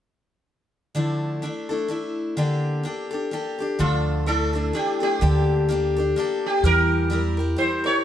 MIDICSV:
0, 0, Header, 1, 4, 480
1, 0, Start_track
1, 0, Key_signature, -1, "minor"
1, 0, Tempo, 473560
1, 966, Time_signature, 3, 2, 24, 8
1, 8152, End_track
2, 0, Start_track
2, 0, Title_t, "Sitar"
2, 0, Program_c, 0, 104
2, 3851, Note_on_c, 0, 65, 62
2, 4295, Note_off_c, 0, 65, 0
2, 4331, Note_on_c, 0, 69, 69
2, 4810, Note_off_c, 0, 69, 0
2, 4814, Note_on_c, 0, 67, 54
2, 5085, Note_off_c, 0, 67, 0
2, 5097, Note_on_c, 0, 67, 68
2, 6540, Note_off_c, 0, 67, 0
2, 6552, Note_on_c, 0, 67, 69
2, 6746, Note_off_c, 0, 67, 0
2, 6749, Note_on_c, 0, 70, 76
2, 7682, Note_off_c, 0, 70, 0
2, 7686, Note_on_c, 0, 72, 70
2, 7960, Note_off_c, 0, 72, 0
2, 7964, Note_on_c, 0, 73, 74
2, 8152, Note_off_c, 0, 73, 0
2, 8152, End_track
3, 0, Start_track
3, 0, Title_t, "Steel-string acoustic guitar"
3, 0, Program_c, 1, 25
3, 959, Note_on_c, 1, 50, 45
3, 964, Note_on_c, 1, 53, 49
3, 969, Note_on_c, 1, 62, 49
3, 970, Note_on_c, 1, 57, 51
3, 978, Note_on_c, 1, 64, 49
3, 980, Note_on_c, 1, 69, 52
3, 1436, Note_off_c, 1, 57, 0
3, 1440, Note_on_c, 1, 57, 47
3, 1444, Note_off_c, 1, 62, 0
3, 1446, Note_off_c, 1, 53, 0
3, 1446, Note_off_c, 1, 64, 0
3, 1448, Note_on_c, 1, 62, 42
3, 1458, Note_on_c, 1, 64, 45
3, 1469, Note_off_c, 1, 69, 0
3, 1473, Note_on_c, 1, 69, 39
3, 1488, Note_off_c, 1, 50, 0
3, 1701, Note_off_c, 1, 69, 0
3, 1713, Note_on_c, 1, 69, 34
3, 1715, Note_off_c, 1, 64, 0
3, 1720, Note_off_c, 1, 57, 0
3, 1724, Note_off_c, 1, 62, 0
3, 1727, Note_on_c, 1, 64, 33
3, 1735, Note_on_c, 1, 62, 29
3, 1752, Note_on_c, 1, 57, 28
3, 1898, Note_off_c, 1, 57, 0
3, 1909, Note_off_c, 1, 62, 0
3, 1910, Note_on_c, 1, 57, 43
3, 1922, Note_off_c, 1, 64, 0
3, 1922, Note_off_c, 1, 69, 0
3, 1922, Note_on_c, 1, 62, 43
3, 1934, Note_on_c, 1, 64, 46
3, 1943, Note_on_c, 1, 69, 47
3, 2398, Note_off_c, 1, 57, 0
3, 2399, Note_on_c, 1, 50, 53
3, 2402, Note_on_c, 1, 58, 57
3, 2408, Note_off_c, 1, 62, 0
3, 2408, Note_off_c, 1, 64, 0
3, 2412, Note_on_c, 1, 62, 53
3, 2412, Note_on_c, 1, 67, 61
3, 2413, Note_off_c, 1, 69, 0
3, 2417, Note_on_c, 1, 69, 54
3, 2861, Note_off_c, 1, 58, 0
3, 2873, Note_on_c, 1, 58, 42
3, 2875, Note_off_c, 1, 62, 0
3, 2883, Note_off_c, 1, 50, 0
3, 2883, Note_off_c, 1, 67, 0
3, 2887, Note_on_c, 1, 62, 44
3, 2892, Note_off_c, 1, 69, 0
3, 2895, Note_on_c, 1, 67, 49
3, 2908, Note_on_c, 1, 69, 49
3, 3137, Note_off_c, 1, 69, 0
3, 3149, Note_on_c, 1, 69, 39
3, 3157, Note_off_c, 1, 58, 0
3, 3158, Note_off_c, 1, 67, 0
3, 3164, Note_off_c, 1, 62, 0
3, 3170, Note_on_c, 1, 67, 34
3, 3185, Note_on_c, 1, 62, 31
3, 3356, Note_off_c, 1, 62, 0
3, 3358, Note_on_c, 1, 58, 43
3, 3360, Note_off_c, 1, 69, 0
3, 3365, Note_off_c, 1, 67, 0
3, 3368, Note_on_c, 1, 62, 39
3, 3377, Note_on_c, 1, 67, 54
3, 3383, Note_on_c, 1, 69, 49
3, 3622, Note_off_c, 1, 69, 0
3, 3634, Note_on_c, 1, 69, 37
3, 3639, Note_off_c, 1, 58, 0
3, 3639, Note_off_c, 1, 67, 0
3, 3644, Note_off_c, 1, 62, 0
3, 3651, Note_on_c, 1, 67, 36
3, 3667, Note_on_c, 1, 62, 32
3, 3838, Note_on_c, 1, 50, 47
3, 3841, Note_off_c, 1, 62, 0
3, 3842, Note_off_c, 1, 69, 0
3, 3842, Note_on_c, 1, 53, 51
3, 3847, Note_on_c, 1, 57, 54
3, 3851, Note_off_c, 1, 67, 0
3, 3853, Note_on_c, 1, 62, 63
3, 3857, Note_on_c, 1, 69, 64
3, 4318, Note_off_c, 1, 57, 0
3, 4322, Note_on_c, 1, 57, 43
3, 4324, Note_off_c, 1, 53, 0
3, 4330, Note_off_c, 1, 62, 0
3, 4334, Note_on_c, 1, 62, 46
3, 4339, Note_on_c, 1, 64, 51
3, 4342, Note_off_c, 1, 69, 0
3, 4346, Note_on_c, 1, 69, 56
3, 4370, Note_off_c, 1, 50, 0
3, 4580, Note_off_c, 1, 69, 0
3, 4592, Note_on_c, 1, 69, 39
3, 4597, Note_off_c, 1, 64, 0
3, 4601, Note_off_c, 1, 57, 0
3, 4602, Note_off_c, 1, 62, 0
3, 4609, Note_on_c, 1, 64, 37
3, 4614, Note_on_c, 1, 62, 35
3, 4625, Note_on_c, 1, 57, 33
3, 4785, Note_off_c, 1, 57, 0
3, 4797, Note_on_c, 1, 57, 45
3, 4799, Note_off_c, 1, 62, 0
3, 4801, Note_off_c, 1, 69, 0
3, 4804, Note_off_c, 1, 64, 0
3, 4811, Note_on_c, 1, 62, 46
3, 4816, Note_on_c, 1, 64, 51
3, 4829, Note_on_c, 1, 69, 52
3, 5058, Note_off_c, 1, 69, 0
3, 5070, Note_off_c, 1, 64, 0
3, 5070, Note_on_c, 1, 69, 39
3, 5078, Note_off_c, 1, 57, 0
3, 5082, Note_on_c, 1, 64, 37
3, 5085, Note_off_c, 1, 62, 0
3, 5098, Note_on_c, 1, 62, 38
3, 5099, Note_on_c, 1, 57, 32
3, 5280, Note_off_c, 1, 57, 0
3, 5280, Note_off_c, 1, 62, 0
3, 5280, Note_off_c, 1, 69, 0
3, 5281, Note_on_c, 1, 50, 54
3, 5285, Note_on_c, 1, 58, 56
3, 5286, Note_off_c, 1, 64, 0
3, 5292, Note_on_c, 1, 62, 54
3, 5294, Note_on_c, 1, 67, 62
3, 5301, Note_on_c, 1, 69, 63
3, 5759, Note_off_c, 1, 58, 0
3, 5763, Note_off_c, 1, 50, 0
3, 5763, Note_on_c, 1, 58, 55
3, 5765, Note_off_c, 1, 62, 0
3, 5773, Note_off_c, 1, 69, 0
3, 5777, Note_on_c, 1, 62, 55
3, 5779, Note_off_c, 1, 67, 0
3, 5783, Note_on_c, 1, 67, 58
3, 5799, Note_on_c, 1, 69, 61
3, 6034, Note_off_c, 1, 69, 0
3, 6040, Note_off_c, 1, 58, 0
3, 6046, Note_on_c, 1, 69, 44
3, 6047, Note_off_c, 1, 62, 0
3, 6050, Note_off_c, 1, 67, 0
3, 6063, Note_on_c, 1, 67, 39
3, 6078, Note_on_c, 1, 62, 37
3, 6245, Note_on_c, 1, 58, 53
3, 6247, Note_off_c, 1, 62, 0
3, 6247, Note_off_c, 1, 69, 0
3, 6256, Note_off_c, 1, 67, 0
3, 6259, Note_on_c, 1, 62, 56
3, 6269, Note_on_c, 1, 67, 59
3, 6279, Note_on_c, 1, 69, 61
3, 6724, Note_off_c, 1, 58, 0
3, 6728, Note_on_c, 1, 52, 58
3, 6731, Note_off_c, 1, 62, 0
3, 6732, Note_off_c, 1, 67, 0
3, 6738, Note_on_c, 1, 55, 60
3, 6741, Note_off_c, 1, 69, 0
3, 6741, Note_on_c, 1, 64, 61
3, 6744, Note_on_c, 1, 67, 63
3, 6753, Note_on_c, 1, 70, 64
3, 7183, Note_off_c, 1, 55, 0
3, 7195, Note_on_c, 1, 55, 55
3, 7204, Note_off_c, 1, 67, 0
3, 7206, Note_off_c, 1, 64, 0
3, 7210, Note_on_c, 1, 64, 50
3, 7216, Note_on_c, 1, 67, 54
3, 7218, Note_off_c, 1, 70, 0
3, 7229, Note_on_c, 1, 70, 58
3, 7259, Note_off_c, 1, 52, 0
3, 7459, Note_off_c, 1, 70, 0
3, 7471, Note_on_c, 1, 70, 46
3, 7475, Note_off_c, 1, 55, 0
3, 7479, Note_off_c, 1, 67, 0
3, 7483, Note_off_c, 1, 64, 0
3, 7491, Note_on_c, 1, 67, 42
3, 7503, Note_on_c, 1, 64, 37
3, 7667, Note_on_c, 1, 55, 45
3, 7671, Note_off_c, 1, 64, 0
3, 7676, Note_off_c, 1, 67, 0
3, 7679, Note_off_c, 1, 70, 0
3, 7683, Note_on_c, 1, 64, 44
3, 7689, Note_on_c, 1, 67, 46
3, 7707, Note_on_c, 1, 70, 46
3, 7932, Note_off_c, 1, 70, 0
3, 7944, Note_on_c, 1, 70, 42
3, 7951, Note_off_c, 1, 55, 0
3, 7952, Note_off_c, 1, 67, 0
3, 7959, Note_off_c, 1, 64, 0
3, 7964, Note_on_c, 1, 67, 40
3, 7977, Note_on_c, 1, 64, 35
3, 8152, Note_off_c, 1, 64, 0
3, 8152, Note_off_c, 1, 67, 0
3, 8152, Note_off_c, 1, 70, 0
3, 8152, End_track
4, 0, Start_track
4, 0, Title_t, "Upright bass"
4, 0, Program_c, 2, 32
4, 3846, Note_on_c, 2, 38, 64
4, 4765, Note_off_c, 2, 38, 0
4, 5287, Note_on_c, 2, 38, 76
4, 6205, Note_off_c, 2, 38, 0
4, 6721, Note_on_c, 2, 40, 68
4, 7641, Note_off_c, 2, 40, 0
4, 8152, End_track
0, 0, End_of_file